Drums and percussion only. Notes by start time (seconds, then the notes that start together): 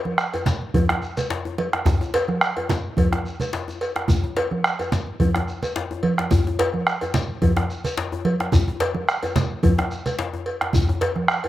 0.05 high conga
0.18 bombo rim, shekere
0.34 cowbell, djembe slap, djembe tone, shekere
0.46 djembe slap, high conga, low conga, shekere
0.62 high conga
0.74 bombo low, cowbell, high conga, djembe bass
0.89 bombo rim, djembe slap, djembe tone
1.02 bombo rim, shekere
1.17 bombo rim, cowbell, low conga, shekere
1.30 bombo rim, djembe slap
1.45 djembe tone
1.58 cowbell, high conga
1.73 bombo rim, djembe slap
1.85 bombo low, djembe slap, high conga, djembe bass, low conga, shekere
2.01 bombo rim, djembe tone, shekere
2.14 bombo rim, cowbell, djembe slap, shekere
2.28 bombo rim, high conga
2.41 bombo rim, shekere
2.57 cowbell, djembe tone
2.69 bombo rim, djembe slap, high conga, low conga, shekere
2.97 bombo low, cowbell, high conga, djembe bass
3.13 bombo rim, djembe slap, djembe tone
3.25 high conga, shekere
3.40 cowbell, high conga, low conga, shekere
3.53 bombo rim, djembe slap, shekere
3.68 djembe tone, shekere
3.81 bombo rim, cowbell, shekere
3.96 bombo rim, djembe slap
4.08 bombo rim, bombo low, high conga, low conga, djembe bass, shekere
4.23 high conga, djembe tone
4.37 cowbell, djembe slap
4.51 high conga
4.64 bombo rim, shekere
4.79 cowbell, djembe slap, djembe tone, shekere
4.92 djembe slap, high conga, low conga, shekere
5.07 high conga
5.20 bombo low, cowbell, high conga, djembe bass
5.35 bombo rim, djembe slap, djembe tone
5.47 bombo rim, shekere
5.63 bombo rim, cowbell, low conga, shekere
5.76 bombo rim, djembe slap
5.91 djembe tone
6.03 cowbell, high conga
6.18 bombo rim, djembe slap
6.31 bombo rim, bombo low, high conga, low conga, djembe bass, shekere
6.46 high conga, djembe tone
6.59 cowbell, djembe slap
6.74 high conga
6.87 bombo rim, shekere
7.01 cowbell, djembe slap, djembe tone, shekere
7.14 djembe slap, high conga, low conga, shekere
7.30 high conga
7.42 bombo low, cowbell, high conga, djembe bass
7.57 bombo rim, djembe slap, djembe tone
7.70 bombo rim, shekere
7.84 bombo rim, cowbell, low conga, shekere
7.97 bombo rim, djembe slap
8.12 djembe tone
8.25 cowbell, high conga
8.40 bombo rim, djembe slap
8.52 bombo rim, bombo low, high conga, low conga, djembe bass, shekere
8.67 high conga, djembe tone
8.80 cowbell, djembe slap
8.95 high conga
9.09 bombo rim, shekere
9.23 cowbell, djembe slap, djembe tone, shekere
9.36 djembe slap, high conga, low conga, shekere
9.51 high conga
9.63 bombo low, cowbell, high conga, djembe bass
9.78 bombo rim, djembe slap, djembe tone
9.91 bombo rim, shekere
10.06 bombo rim, cowbell, low conga, shekere
10.19 bombo rim, djembe slap
10.33 djembe tone
10.46 cowbell
10.61 bombo rim, djembe slap
10.73 bombo low, high conga, low conga, djembe bass, shekere
10.89 bombo rim, djembe slap, djembe tone
11.01 cowbell, djembe slap
11.16 bombo rim, high conga
11.28 bombo rim, djembe slap, high conga, shekere
11.44 cowbell, djembe tone